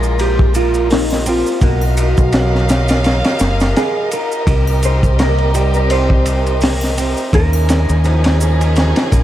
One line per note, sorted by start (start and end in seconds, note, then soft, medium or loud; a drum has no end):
0.00 1.42 A#1 medium
0.00 0.87 G#3 medium
0.00 1.57 G#3 medium
0.00 1.59 A#3 medium
0.00 1.59 F4 medium
0.00 0.22 A#4 loud
0.00 maracas soft
0.19 0.56 G4 medium
0.19 ride medium
0.19 maracas soft
0.39 kick medium
0.54 0.88 F4 medium
0.54 ride medium
0.54 maracas medium
0.74 ride soft
0.74 maracas soft
0.90 1.23 A#3 medium
0.90 1.24 D#4 medium
0.90 snare loud
0.90 open hi-hat medium
0.90 maracas soft
1.10 snare medium
1.10 triangle medium
1.26 1.58 C4 medium
1.26 1.60 F4 medium
1.26 ride medium
1.26 maracas medium
1.46 maracas medium
1.61 2.14 B1 medium
1.61 1.84 A#3 medium
1.61 2.66 F#4 medium
1.61 7.29 A#4 medium
1.61 7.29 D#5 medium
1.61 4.45 F5 medium
1.61 kick loud
1.61 ride medium
1.61 maracas soft
1.81 triangle medium
1.97 ride medium
1.97 maracas medium
2.17 3.21 B1 medium
2.17 kick loud
2.17 maracas soft
2.32 3.37 F#3 medium
2.32 snare loud
2.32 ride medium
2.32 maracas soft
2.55 snare soft
2.69 snare loud
2.69 ride medium
2.69 maracas medium
2.88 snare loud
2.88 ride medium
2.88 maracas soft
3.04 snare loud
3.04 ride medium
3.04 maracas soft
3.24 snare loud
3.24 ride medium
3.39 3.72 F#1 medium
3.39 3.74 A#3 medium
3.39 snare loud
3.39 ride medium
3.39 maracas medium
3.60 snare medium
3.60 ride medium
3.60 maracas soft
3.76 4.10 G#4 medium
3.76 snare loud
3.76 ride medium
3.76 maracas soft
4.11 4.85 A#4 loud
4.11 ride medium
4.11 maracas medium
4.32 maracas medium
4.47 7.13 C2 medium
4.47 7.30 C4 medium
4.47 7.30 G4 medium
4.47 kick loud
4.47 ride medium
4.47 maracas soft
4.67 triangle medium
4.83 5.20 C5 loud
4.83 ride medium
4.83 maracas medium
5.03 kick medium
5.03 maracas soft
5.19 5.51 A#3 medium
5.19 5.75 A#4 loud
5.19 snare loud
5.19 ride medium
5.19 maracas soft
5.38 ride soft
5.54 6.58 G3 loud
5.54 ride medium
5.54 maracas medium
5.74 5.91 A#4 medium
5.74 maracas soft
5.90 6.94 C5 medium
5.90 ride medium
5.90 maracas soft
6.10 kick medium
6.26 ride medium
6.26 maracas medium
6.46 ride soft
6.46 maracas soft
6.61 6.94 A#3 medium
6.61 snare loud
6.61 open hi-hat medium
6.61 maracas soft
6.81 snare soft
6.81 triangle medium
6.97 7.30 C4 medium
6.97 ride medium
6.97 maracas medium
7.17 maracas soft
7.33 7.85 D#2 loud
7.33 7.55 A#3 medium
7.33 9.23 C#4 medium
7.33 9.23 D#4 medium
7.33 9.23 G#4 medium
7.33 9.23 A#4 loud
7.33 kick loud
7.33 ride medium
7.33 maracas soft
7.53 triangle medium
7.69 snare loud
7.69 ride medium
7.69 maracas medium
7.89 8.92 D#2 medium
7.89 ride soft
7.89 maracas medium
8.04 9.08 F3 medium
8.04 ride medium
8.04 maracas soft
8.24 snare loud
8.24 ride medium
8.41 ride soft
8.41 maracas medium
8.61 ride medium
8.61 maracas soft
8.76 snare medium
8.76 ride medium
8.76 maracas soft
8.96 snare medium
8.96 ride medium
9.11 9.23 A#1 medium
9.11 9.23 A#3 medium
9.11 kick medium
9.11 ride medium
9.11 maracas medium